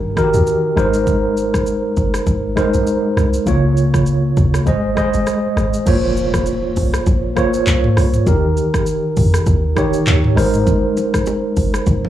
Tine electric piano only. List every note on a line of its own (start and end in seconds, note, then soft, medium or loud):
0.00 0.16 D#3 medium
0.00 0.16 D#4 medium
0.00 0.24 G4 medium
0.00 0.18 A#4 loud
0.16 0.76 D#3 loud
0.16 0.75 D#4 medium
0.16 0.25 F#4 medium
0.16 0.76 A#4 loud
0.24 0.80 G4 medium
0.76 1.73 G#3 medium
0.76 1.74 D#4 medium
0.76 1.74 A#4 medium
0.76 1.75 C5 loud
2.56 3.16 G#3 medium
2.56 3.17 D#4 medium
2.56 3.17 A#4 medium
2.56 3.17 C5 loud
3.46 4.28 C#3 medium
3.46 4.28 A#3 medium
3.46 4.28 F4 medium
3.46 4.29 C#5 loud
4.66 4.91 G#3 loud
4.66 4.92 G#4 medium
4.66 4.92 C5 medium
4.66 4.92 D#5 loud
4.96 5.56 G#3 medium
4.96 5.56 G#4 medium
4.96 5.57 C5 medium
4.96 5.57 D#5 loud
5.86 6.68 A#3 medium
5.86 6.68 F4 medium
5.86 6.68 C5 medium
5.86 6.69 C#5 medium
7.36 7.96 A#3 medium
7.36 7.96 F4 medium
7.36 7.97 C5 medium
7.36 7.97 C#5 loud
8.26 9.08 D#3 medium
8.26 9.08 D#4 medium
8.26 9.08 G4 medium
8.26 9.09 A#4 medium
9.76 10.36 D#3 medium
9.76 10.35 D#4 medium
9.76 10.37 G4 medium
9.76 10.37 C#5 loud
10.36 11.33 G#3 medium
10.36 11.34 D#4 medium
10.36 11.34 A#4 medium
10.36 11.34 C5 loud